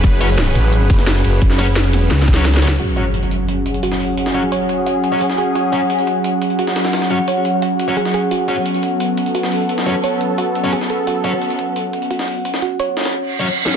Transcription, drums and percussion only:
0.04 kick loud
0.04 closed hi-hat medium
0.04 shaker medium
0.21 closed hi-hat loud
0.21 closed hi-hat medium
0.21 ride medium
0.21 shaker soft
0.29 shaker medium
0.38 snare loud
0.38 closed hi-hat medium
0.38 closed hi-hat loud
0.38 shaker medium
0.47 closed hi-hat soft
0.55 closed hi-hat medium
0.55 open hi-hat medium
0.55 ride medium
0.73 closed hi-hat medium
0.73 shaker medium
0.90 kick loud
0.90 closed hi-hat medium
0.90 ride medium
0.99 snare soft
0.99 closed hi-hat soft
1.07 snare loud
1.07 closed hi-hat medium
1.07 shaker medium
1.16 snare medium
1.24 open hi-hat medium
1.24 ride medium
1.24 shaker soft
1.42 kick loud
1.42 closed hi-hat medium
1.42 shaker medium
1.50 snare soft
1.50 snare medium
1.59 snare soft
1.59 closed hi-hat loud
1.59 closed hi-hat medium
1.59 ride medium
1.59 shaker soft
1.68 shaker medium
1.76 snare loud
1.76 closed hi-hat medium
1.76 shaker medium
1.93 snare soft
1.93 closed hi-hat medium
1.93 open hi-hat medium
1.93 ride medium
2.02 shaker soft
2.11 snare medium
2.11 closed hi-hat medium
2.11 shaker medium
2.19 snare medium
2.19 closed hi-hat medium
2.28 kick loud
2.28 closed hi-hat medium
2.28 ride medium
2.34 snare medium
2.34 closed hi-hat medium
2.45 snare medium
2.45 snare loud
2.45 closed hi-hat medium
2.45 shaker soft
2.54 snare loud
2.54 closed hi-hat medium
2.57 snare loud
2.62 snare loud
2.62 closed hi-hat medium
2.62 open hi-hat medium
2.62 ride medium
2.62 shaker soft
2.68 snare loud
2.68 closed hi-hat soft
2.80 closed hi-hat medium
2.97 closed hi-hat medium
3.14 closed hi-hat medium
3.23 closed hi-hat soft
3.31 closed hi-hat medium
3.49 closed hi-hat medium
3.66 closed hi-hat medium
3.74 closed hi-hat soft
3.83 closed hi-hat medium
3.92 snare medium
4.00 closed hi-hat medium
4.00 open hi-hat medium
4.17 closed hi-hat medium
4.26 snare medium
4.35 closed hi-hat medium
4.52 closed hi-hat medium
4.69 closed hi-hat medium
4.86 closed hi-hat medium
5.04 closed hi-hat medium
5.21 closed hi-hat medium
5.30 snare soft
5.38 closed hi-hat medium
5.55 closed hi-hat medium
5.73 closed hi-hat medium
5.90 closed hi-hat medium
5.99 closed hi-hat soft
6.07 closed hi-hat medium
6.24 closed hi-hat medium
6.42 closed hi-hat medium
6.50 closed hi-hat soft
6.59 closed hi-hat medium
6.67 snare medium
6.76 snare loud
6.76 closed hi-hat medium
6.85 snare medium
6.85 closed hi-hat medium
6.93 snare loud
6.93 closed hi-hat medium
7.02 snare medium
7.11 closed hi-hat medium
7.28 closed hi-hat medium
7.45 closed hi-hat medium
7.62 closed hi-hat medium
7.80 closed hi-hat medium
7.97 closed hi-hat medium
8.05 snare soft
8.14 closed hi-hat medium
8.31 closed hi-hat medium
8.48 closed hi-hat medium
8.66 closed hi-hat medium
8.74 closed hi-hat soft
8.83 closed hi-hat medium
9.00 closed hi-hat medium
9.17 closed hi-hat medium
9.26 closed hi-hat soft
9.35 closed hi-hat medium
9.43 snare medium
9.52 closed hi-hat medium
9.52 open hi-hat medium
9.69 closed hi-hat medium
9.78 snare medium
9.86 closed hi-hat medium
10.04 closed hi-hat medium
10.21 closed hi-hat medium
10.38 closed hi-hat medium
10.55 closed hi-hat medium
10.73 closed hi-hat medium
10.81 snare soft
10.90 closed hi-hat medium
11.07 closed hi-hat medium
11.24 closed hi-hat medium
11.42 closed hi-hat medium
11.50 closed hi-hat soft
11.59 closed hi-hat medium
11.76 closed hi-hat medium
11.93 closed hi-hat medium
12.02 closed hi-hat soft
12.11 closed hi-hat medium
12.19 snare soft
12.28 closed hi-hat medium
12.28 open hi-hat medium
12.45 closed hi-hat medium
12.54 snare medium
12.62 closed hi-hat medium
12.80 closed hi-hat medium
12.97 snare medium
12.97 closed hi-hat medium
13.01 snare medium
13.01 closed hi-hat medium
13.05 snare medium
13.05 closed hi-hat medium
13.66 snare medium

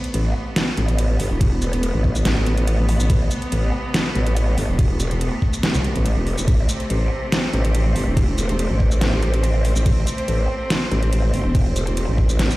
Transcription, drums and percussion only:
0.04 closed hi-hat medium
0.14 closed hi-hat medium
0.14 crash soft
0.56 snare loud
0.56 closed hi-hat medium
0.56 crash medium
0.77 closed hi-hat medium
0.88 closed hi-hat medium
0.98 closed hi-hat medium
0.98 crash soft
1.20 open hi-hat loud
1.41 kick loud
1.41 closed hi-hat medium
1.41 crash medium
1.62 closed hi-hat medium
1.62 shaker medium
1.73 closed hi-hat medium
1.83 closed hi-hat medium
1.83 crash soft
2.04 kick medium
2.15 shaker medium
2.25 snare loud
2.25 closed hi-hat medium
2.25 crash medium
2.46 closed hi-hat medium
2.58 closed hi-hat medium
2.67 closed hi-hat medium
2.67 crash soft
2.89 open hi-hat medium
3.00 shaker medium
3.10 kick loud
3.10 closed hi-hat medium
3.10 crash medium
3.31 closed hi-hat medium
3.31 shaker medium
3.42 closed hi-hat medium
3.52 closed hi-hat medium
3.52 crash soft
3.94 snare loud
3.94 closed hi-hat medium
3.94 crash medium
4.15 closed hi-hat medium
4.27 closed hi-hat medium
4.37 closed hi-hat medium
4.37 crash soft
4.58 open hi-hat medium
4.79 kick loud
4.79 closed hi-hat medium
4.79 crash medium
5.00 closed hi-hat medium
5.00 shaker medium
5.11 closed hi-hat medium
5.21 closed hi-hat medium
5.21 crash soft
5.42 kick medium
5.53 shaker medium
5.63 snare loud
5.63 closed hi-hat medium
5.63 crash medium
5.74 shaker medium
5.84 closed hi-hat medium
5.96 closed hi-hat medium
6.06 closed hi-hat medium
6.06 crash soft
6.27 open hi-hat medium
6.38 shaker medium
6.48 kick loud
6.48 closed hi-hat medium
6.48 crash medium
6.69 closed hi-hat soft
6.69 shaker medium
6.80 closed hi-hat soft
6.90 closed hi-hat medium
6.90 crash soft
7.32 snare loud
7.32 closed hi-hat medium
7.32 crash medium
7.53 closed hi-hat medium
7.65 closed hi-hat medium
7.75 closed hi-hat medium
7.75 crash soft
7.96 open hi-hat medium
8.17 kick loud
8.17 closed hi-hat medium
8.17 crash medium
8.38 closed hi-hat medium
8.38 shaker medium
8.49 closed hi-hat medium
8.59 closed hi-hat medium
8.59 crash soft
8.80 kick medium
8.91 shaker medium
9.01 snare loud
9.01 closed hi-hat medium
9.01 crash medium
9.22 closed hi-hat medium
9.34 closed hi-hat medium
9.44 closed hi-hat medium
9.44 crash soft
9.65 open hi-hat medium
9.76 shaker medium
9.86 kick loud
9.86 closed hi-hat medium
9.86 crash medium
10.07 closed hi-hat medium
10.07 shaker medium
10.18 closed hi-hat medium
10.28 closed hi-hat medium
10.28 crash medium
10.70 snare loud
10.70 closed hi-hat medium
10.70 crash medium
10.91 closed hi-hat medium
11.03 closed hi-hat medium
11.13 closed hi-hat medium
11.13 crash soft
11.34 open hi-hat loud
11.55 kick loud
11.55 closed hi-hat medium
11.55 crash medium
11.76 closed hi-hat medium
11.76 shaker medium
11.87 closed hi-hat medium
11.97 closed hi-hat medium
11.97 crash soft
12.18 kick medium
12.29 shaker medium
12.39 snare loud
12.39 closed hi-hat medium
12.39 crash medium
12.50 shaker medium

